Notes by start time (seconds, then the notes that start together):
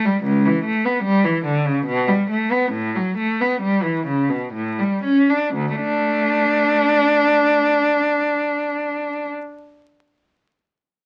0.06 G3
0.24 C#2
0.46 E3
0.65 A3
0.85 B3
1.03 G3
1.25 E3
1.45 D3
1.66 C#3
1.86 B2
2.08 G3
2.30 A3
2.52 B3
2.72 A2
2.96 F#3
3.17 A3
3.41 B3
3.61 G3
3.83 E3
4.07 C#3
4.30 B2
4.53 A2
4.79 G3
5.04 C#4
5.30 D4
5.54 D2
5.75 A3 D4